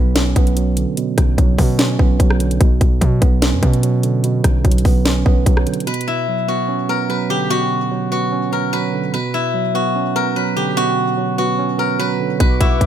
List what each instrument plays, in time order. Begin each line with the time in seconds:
Already playing: 808-style bass B1, tine electric piano B2 F#3 B3, guzheng F#4 B4
0.16 tine electric piano C#4, snare, closed hi-hat
0.36 808-style bass B1, tine electric piano B3, kick, closed hi-hat
0.47 closed hi-hat
0.56 tine electric piano F#3, closed hi-hat
0.77 tine electric piano D3, closed hi-hat
0.97 tine electric piano B2, closed hi-hat
1.18 808-style bass B1, kick, cross-stick, closed hi-hat
1.38 808-style bass B1, tine electric piano F#3, kick, closed hi-hat
1.58 808-style bass B2, tine electric piano B3, kick, open hi-hat
1.79 tine electric piano C#4, snare, closed hi-hat
1.99 808-style bass B1, tine electric piano B3, kick
2.20 808-style bass B1, tine electric piano F#3, kick, closed hi-hat
2.30 cross-stick
2.40 tine electric piano D3, closed hi-hat, open hi-hat
2.51 closed hi-hat
2.60 808-style bass B1, tine electric piano B2, kick, closed hi-hat
2.81 808-style bass B1, kick, closed hi-hat
3.01 808-style bass B2, tine electric piano F#3, kick, closed hi-hat
3.21 808-style bass B1, tine electric piano B3, kick, closed hi-hat
3.42 tine electric piano C#4, snare, closed hi-hat
3.53 808-style bass F#2
3.63 808-style bass B2, tine electric piano B3, kick, closed hi-hat
3.73 closed hi-hat
3.83 tine electric piano F#3, closed hi-hat
4.03 tine electric piano D3, closed hi-hat
4.24 tine electric piano B2, closed hi-hat
4.44 808-style bass B1, kick, cross-stick, closed hi-hat
4.64 808-style bass B1, tine electric piano F#3, kick, closed hi-hat
4.71 closed hi-hat
4.78 closed hi-hat
4.85 808-style bass B1, tine electric piano B3, kick, open hi-hat
5.06 tine electric piano C#4, snare, closed hi-hat
5.25 808-style bass B1, tine electric piano B3, kick
5.46 808-style bass B1, tine electric piano F#3, kick, closed hi-hat
5.57 cross-stick
5.67 tine electric piano D3, closed hi-hat, open hi-hat
5.74 closed hi-hat
5.80 closed hi-hat
5.87 tine electric piano B2, guzheng B4, closed hi-hat
5.94 closed hi-hat
6.01 closed hi-hat
6.08 guzheng E4
6.28 tine electric piano F#3
6.48 tine electric piano B3, guzheng F#4
6.69 tine electric piano C#4
6.89 tine electric piano B3, guzheng A#4
7.09 tine electric piano F#3, guzheng B4
7.30 tine electric piano D3, guzheng G4
7.50 tine electric piano B2, guzheng F#4
7.91 tine electric piano F#3
8.12 tine electric piano B3, guzheng F#4
8.32 tine electric piano C#4
8.52 tine electric piano B3, guzheng A#4
8.73 tine electric piano F#3, guzheng B4
8.93 tine electric piano D3
9.14 tine electric piano B2, guzheng B4
9.34 guzheng E4
9.54 tine electric piano F#3
9.74 tine electric piano B3, guzheng F#4
9.96 tine electric piano C#4
10.16 tine electric piano B3, guzheng A#4
10.36 tine electric piano F#3, guzheng B4
10.56 tine electric piano D3, guzheng G4
10.77 tine electric piano B2, guzheng F#4
11.17 tine electric piano F#3
11.38 tine electric piano B3, guzheng F#4
11.59 tine electric piano C#4
11.78 tine electric piano B3, guzheng A#4
11.99 tine electric piano F#3, guzheng B4
12.20 tine electric piano D3
12.40 808-style bass B1, tine electric piano B2, guzheng B4, analog synth pad B4 F#5 C#6 D6, kick, closed hi-hat
12.61 808-style bass B1, guzheng E4, kick, closed hi-hat
12.81 808-style bass B1, tine electric piano F#3, kick, closed hi-hat